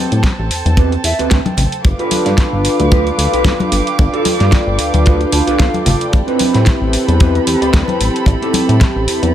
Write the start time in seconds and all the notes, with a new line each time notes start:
Already playing: C4 G4 A4 B4 G5 A5
0.12 A2, closed hi-hat
0.24 kick, snare, closed hi-hat
0.39 A1
0.50 E2, muted clean electric guitar stroke, open hi-hat
0.66 E2, closed hi-hat, high conga
0.77 C4 G4 B4, kick, closed hi-hat
0.92 closed hi-hat
1.04 E2 E5, muted clean electric guitar stroke, open hi-hat
1.19 D2 C4 G4 B4, closed hi-hat
1.31 D2 G5, kick, snare, closed hi-hat
1.45 closed hi-hat, high conga
1.57 A1, muted clean electric guitar stroke, open hi-hat, low conga
1.72 closed hi-hat
1.83 G1 D4 F4 A4 B4 F5 G5 D6, muted clean electric guitar stroke, kick, closed hi-hat
1.99 F4 G4 B4, closed hi-hat
2.11 open hi-hat, high conga
2.26 G2, snare, closed hi-hat
2.38 kick, snare, closed hi-hat
2.53 G1
2.64 D4 F4 A4 B4, muted clean electric guitar stroke, open hi-hat
2.80 D2, closed hi-hat, high conga
2.91 F4 G4 B4, kick, closed hi-hat
3.07 closed hi-hat
3.18 D2, muted clean electric guitar stroke, open hi-hat
3.33 B1 F4 G4 B4, closed hi-hat
3.44 B1, kick, snare, closed hi-hat
3.60 closed hi-hat, high conga
3.71 G1 D4 F4 A4 B4, open hi-hat
3.87 closed hi-hat
3.97 G1 D4 F4 A4 D5, muted clean electric guitar stroke, kick, closed hi-hat
4.13 F4 G4 A4, closed hi-hat
4.25 open hi-hat, high conga
4.40 G2, snare, closed hi-hat
4.52 kick, snare, closed hi-hat
4.67 G1
4.79 D2 D4 F4 A4 B4, muted clean electric guitar stroke, open hi-hat
4.94 D2, closed hi-hat, high conga
5.05 F4 G4 B4, kick, closed hi-hat
5.21 closed hi-hat
5.32 D2 D4 F4 A4 D5 A5, muted clean electric guitar stroke, open hi-hat
5.47 B1 F4 G4 B4, closed hi-hat
5.59 B1 F5, kick, snare, closed hi-hat
5.74 closed hi-hat, high conga
5.85 G1 D5, muted clean electric guitar stroke, open hi-hat, low conga
6.01 closed hi-hat
6.12 A1 C4 E4 G4 A4 B4 B5, muted clean electric guitar stroke, kick, closed hi-hat
6.27 C4 G4 B4, closed hi-hat
6.39 open hi-hat, high conga
6.54 A2, snare, closed hi-hat
6.66 kick, snare, closed hi-hat
6.81 A1
6.92 C4 E4 G4 B4, muted clean electric guitar stroke, open hi-hat
7.08 E2, closed hi-hat, high conga
7.20 C4 G4 B4, kick, closed hi-hat
7.35 closed hi-hat
7.46 E2, muted clean electric guitar stroke, open hi-hat
7.61 D2 C4 G4 D5, closed hi-hat
7.73 D2, kick, snare, closed hi-hat
7.88 closed hi-hat, high conga
8.00 A1 C4 E4 G4 B4, muted clean electric guitar stroke, open hi-hat
8.16 closed hi-hat
8.26 A1 C4 E4 G4, muted clean electric guitar stroke, kick, closed hi-hat
8.42 C4 G4 A4, closed hi-hat
8.53 open hi-hat, high conga
8.69 A2, closed hi-hat
8.81 kick, snare, closed hi-hat
8.96 A1
9.07 E2 C4 E4 G4 B4, muted clean electric guitar stroke, open hi-hat
9.23 E2, closed hi-hat, high conga